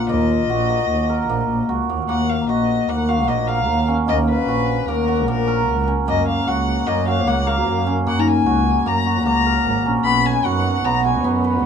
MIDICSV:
0, 0, Header, 1, 6, 480
1, 0, Start_track
1, 0, Key_signature, -6, "minor"
1, 0, Tempo, 398142
1, 112, Time_signature, 5, 2, 24, 8
1, 14056, End_track
2, 0, Start_track
2, 0, Title_t, "Violin"
2, 0, Program_c, 0, 40
2, 121, Note_on_c, 0, 75, 75
2, 1993, Note_off_c, 0, 75, 0
2, 2519, Note_on_c, 0, 78, 74
2, 2763, Note_on_c, 0, 77, 68
2, 2781, Note_off_c, 0, 78, 0
2, 2995, Note_off_c, 0, 77, 0
2, 3003, Note_on_c, 0, 75, 67
2, 3488, Note_on_c, 0, 78, 68
2, 3506, Note_off_c, 0, 75, 0
2, 3718, Note_on_c, 0, 77, 70
2, 3737, Note_off_c, 0, 78, 0
2, 3951, Note_on_c, 0, 75, 66
2, 3969, Note_off_c, 0, 77, 0
2, 4185, Note_on_c, 0, 77, 77
2, 4203, Note_off_c, 0, 75, 0
2, 4674, Note_off_c, 0, 77, 0
2, 4928, Note_on_c, 0, 75, 76
2, 5035, Note_off_c, 0, 75, 0
2, 5165, Note_on_c, 0, 71, 85
2, 5899, Note_on_c, 0, 70, 75
2, 5917, Note_off_c, 0, 71, 0
2, 6371, Note_off_c, 0, 70, 0
2, 6377, Note_on_c, 0, 70, 80
2, 7042, Note_off_c, 0, 70, 0
2, 7334, Note_on_c, 0, 75, 83
2, 7552, Note_off_c, 0, 75, 0
2, 7568, Note_on_c, 0, 77, 82
2, 7810, Note_on_c, 0, 78, 78
2, 7828, Note_off_c, 0, 77, 0
2, 8276, Note_on_c, 0, 75, 82
2, 8294, Note_off_c, 0, 78, 0
2, 8520, Note_off_c, 0, 75, 0
2, 8534, Note_on_c, 0, 77, 80
2, 8771, Note_on_c, 0, 78, 85
2, 8790, Note_off_c, 0, 77, 0
2, 9013, Note_on_c, 0, 77, 86
2, 9031, Note_off_c, 0, 78, 0
2, 9488, Note_off_c, 0, 77, 0
2, 9741, Note_on_c, 0, 78, 84
2, 9882, Note_on_c, 0, 82, 58
2, 9900, Note_off_c, 0, 78, 0
2, 9976, Note_on_c, 0, 80, 86
2, 9994, Note_off_c, 0, 82, 0
2, 10693, Note_on_c, 0, 82, 79
2, 10711, Note_off_c, 0, 80, 0
2, 11151, Note_off_c, 0, 82, 0
2, 11159, Note_on_c, 0, 82, 88
2, 11831, Note_off_c, 0, 82, 0
2, 12113, Note_on_c, 0, 83, 91
2, 12366, Note_on_c, 0, 80, 85
2, 12384, Note_off_c, 0, 83, 0
2, 12599, Note_on_c, 0, 78, 85
2, 12617, Note_off_c, 0, 80, 0
2, 13073, Note_on_c, 0, 82, 88
2, 13091, Note_off_c, 0, 78, 0
2, 13315, Note_off_c, 0, 82, 0
2, 13329, Note_on_c, 0, 80, 71
2, 13546, Note_off_c, 0, 80, 0
2, 14056, End_track
3, 0, Start_track
3, 0, Title_t, "Celesta"
3, 0, Program_c, 1, 8
3, 2912, Note_on_c, 1, 82, 47
3, 3403, Note_off_c, 1, 82, 0
3, 4898, Note_on_c, 1, 75, 44
3, 5267, Note_on_c, 1, 77, 62
3, 5387, Note_off_c, 1, 75, 0
3, 5764, Note_off_c, 1, 77, 0
3, 8575, Note_on_c, 1, 73, 63
3, 9065, Note_off_c, 1, 73, 0
3, 9135, Note_on_c, 1, 66, 51
3, 9628, Note_off_c, 1, 66, 0
3, 9870, Note_on_c, 1, 63, 47
3, 10362, Note_off_c, 1, 63, 0
3, 14056, End_track
4, 0, Start_track
4, 0, Title_t, "Hammered dulcimer"
4, 0, Program_c, 2, 15
4, 0, Note_on_c, 2, 65, 66
4, 0, Note_on_c, 2, 70, 62
4, 111, Note_on_c, 2, 58, 70
4, 599, Note_on_c, 2, 66, 63
4, 671, Note_off_c, 2, 65, 0
4, 834, Note_off_c, 2, 58, 0
4, 839, Note_on_c, 2, 58, 59
4, 1315, Note_off_c, 2, 70, 0
4, 1320, Note_on_c, 2, 70, 61
4, 1555, Note_off_c, 2, 58, 0
4, 1560, Note_on_c, 2, 58, 63
4, 2031, Note_off_c, 2, 66, 0
4, 2036, Note_on_c, 2, 66, 66
4, 2279, Note_off_c, 2, 58, 0
4, 2284, Note_on_c, 2, 58, 57
4, 2512, Note_off_c, 2, 58, 0
4, 2517, Note_on_c, 2, 58, 73
4, 2997, Note_off_c, 2, 66, 0
4, 3001, Note_on_c, 2, 66, 68
4, 3476, Note_off_c, 2, 58, 0
4, 3480, Note_on_c, 2, 58, 67
4, 3717, Note_off_c, 2, 66, 0
4, 3721, Note_on_c, 2, 66, 65
4, 3954, Note_off_c, 2, 58, 0
4, 3959, Note_on_c, 2, 58, 68
4, 4197, Note_off_c, 2, 70, 0
4, 4201, Note_on_c, 2, 70, 69
4, 4678, Note_on_c, 2, 61, 62
4, 4913, Note_off_c, 2, 58, 0
4, 4917, Note_on_c, 2, 58, 77
4, 5400, Note_off_c, 2, 66, 0
4, 5405, Note_on_c, 2, 66, 66
4, 5879, Note_off_c, 2, 58, 0
4, 5884, Note_on_c, 2, 58, 72
4, 6118, Note_off_c, 2, 66, 0
4, 6123, Note_on_c, 2, 66, 66
4, 6359, Note_off_c, 2, 58, 0
4, 6364, Note_on_c, 2, 58, 77
4, 6597, Note_off_c, 2, 70, 0
4, 6602, Note_on_c, 2, 70, 70
4, 7080, Note_off_c, 2, 61, 0
4, 7084, Note_on_c, 2, 61, 62
4, 7323, Note_off_c, 2, 58, 0
4, 7328, Note_on_c, 2, 58, 77
4, 7803, Note_off_c, 2, 66, 0
4, 7807, Note_on_c, 2, 66, 71
4, 8282, Note_off_c, 2, 58, 0
4, 8287, Note_on_c, 2, 58, 76
4, 8521, Note_off_c, 2, 66, 0
4, 8526, Note_on_c, 2, 66, 70
4, 8761, Note_off_c, 2, 58, 0
4, 8766, Note_on_c, 2, 58, 76
4, 8998, Note_off_c, 2, 70, 0
4, 9003, Note_on_c, 2, 70, 65
4, 9479, Note_off_c, 2, 61, 0
4, 9484, Note_on_c, 2, 61, 66
4, 9719, Note_off_c, 2, 58, 0
4, 9724, Note_on_c, 2, 58, 79
4, 10198, Note_off_c, 2, 66, 0
4, 10203, Note_on_c, 2, 66, 70
4, 10678, Note_off_c, 2, 58, 0
4, 10682, Note_on_c, 2, 58, 70
4, 10921, Note_off_c, 2, 66, 0
4, 10926, Note_on_c, 2, 66, 64
4, 11157, Note_off_c, 2, 58, 0
4, 11162, Note_on_c, 2, 58, 65
4, 11402, Note_off_c, 2, 70, 0
4, 11407, Note_on_c, 2, 70, 65
4, 11881, Note_off_c, 2, 61, 0
4, 11886, Note_on_c, 2, 61, 58
4, 12123, Note_on_c, 2, 59, 77
4, 12196, Note_off_c, 2, 58, 0
4, 12196, Note_off_c, 2, 70, 0
4, 12597, Note_off_c, 2, 66, 0
4, 12602, Note_on_c, 2, 66, 70
4, 13075, Note_off_c, 2, 59, 0
4, 13080, Note_on_c, 2, 59, 71
4, 13314, Note_off_c, 2, 66, 0
4, 13319, Note_on_c, 2, 66, 69
4, 13549, Note_off_c, 2, 59, 0
4, 13554, Note_on_c, 2, 59, 73
4, 13795, Note_on_c, 2, 71, 65
4, 14056, Note_off_c, 2, 59, 0
4, 14056, Note_off_c, 2, 61, 0
4, 14056, Note_off_c, 2, 66, 0
4, 14056, Note_off_c, 2, 71, 0
4, 14056, End_track
5, 0, Start_track
5, 0, Title_t, "String section"
5, 0, Program_c, 3, 48
5, 12126, Note_on_c, 3, 59, 64
5, 12128, Note_on_c, 3, 61, 58
5, 12128, Note_on_c, 3, 63, 68
5, 14056, Note_off_c, 3, 59, 0
5, 14056, Note_off_c, 3, 61, 0
5, 14056, Note_off_c, 3, 63, 0
5, 14056, End_track
6, 0, Start_track
6, 0, Title_t, "Double bass"
6, 0, Program_c, 4, 43
6, 111, Note_on_c, 4, 39, 79
6, 565, Note_off_c, 4, 39, 0
6, 591, Note_on_c, 4, 34, 82
6, 1045, Note_off_c, 4, 34, 0
6, 1075, Note_on_c, 4, 39, 68
6, 1528, Note_off_c, 4, 39, 0
6, 1560, Note_on_c, 4, 34, 77
6, 1784, Note_off_c, 4, 34, 0
6, 1798, Note_on_c, 4, 34, 72
6, 2013, Note_off_c, 4, 34, 0
6, 2040, Note_on_c, 4, 37, 58
6, 2254, Note_off_c, 4, 37, 0
6, 2275, Note_on_c, 4, 39, 72
6, 2492, Note_off_c, 4, 39, 0
6, 2513, Note_on_c, 4, 39, 66
6, 2969, Note_off_c, 4, 39, 0
6, 2996, Note_on_c, 4, 34, 68
6, 3451, Note_off_c, 4, 34, 0
6, 3481, Note_on_c, 4, 39, 74
6, 3957, Note_on_c, 4, 34, 75
6, 3975, Note_off_c, 4, 39, 0
6, 4431, Note_on_c, 4, 39, 83
6, 4449, Note_off_c, 4, 34, 0
6, 4662, Note_off_c, 4, 39, 0
6, 4917, Note_on_c, 4, 39, 74
6, 5373, Note_off_c, 4, 39, 0
6, 5400, Note_on_c, 4, 34, 74
6, 5854, Note_off_c, 4, 34, 0
6, 5883, Note_on_c, 4, 39, 71
6, 6361, Note_on_c, 4, 34, 78
6, 6379, Note_off_c, 4, 39, 0
6, 6844, Note_on_c, 4, 37, 83
6, 6862, Note_off_c, 4, 34, 0
6, 7070, Note_off_c, 4, 37, 0
6, 7321, Note_on_c, 4, 42, 72
6, 7775, Note_off_c, 4, 42, 0
6, 7808, Note_on_c, 4, 37, 78
6, 8259, Note_off_c, 4, 37, 0
6, 8287, Note_on_c, 4, 42, 81
6, 8767, Note_on_c, 4, 37, 83
6, 8785, Note_off_c, 4, 42, 0
6, 9250, Note_on_c, 4, 42, 82
6, 9268, Note_off_c, 4, 37, 0
6, 9473, Note_off_c, 4, 42, 0
6, 9729, Note_on_c, 4, 42, 73
6, 10179, Note_off_c, 4, 42, 0
6, 10206, Note_on_c, 4, 37, 79
6, 10657, Note_off_c, 4, 37, 0
6, 10684, Note_on_c, 4, 42, 71
6, 11161, Note_on_c, 4, 37, 79
6, 11179, Note_off_c, 4, 42, 0
6, 11641, Note_off_c, 4, 37, 0
6, 11646, Note_on_c, 4, 32, 64
6, 11859, Note_off_c, 4, 32, 0
6, 11881, Note_on_c, 4, 34, 73
6, 12097, Note_off_c, 4, 34, 0
6, 12116, Note_on_c, 4, 35, 73
6, 12570, Note_off_c, 4, 35, 0
6, 12598, Note_on_c, 4, 42, 74
6, 13050, Note_off_c, 4, 42, 0
6, 13078, Note_on_c, 4, 35, 77
6, 13552, Note_on_c, 4, 42, 72
6, 13570, Note_off_c, 4, 35, 0
6, 14053, Note_off_c, 4, 42, 0
6, 14056, End_track
0, 0, End_of_file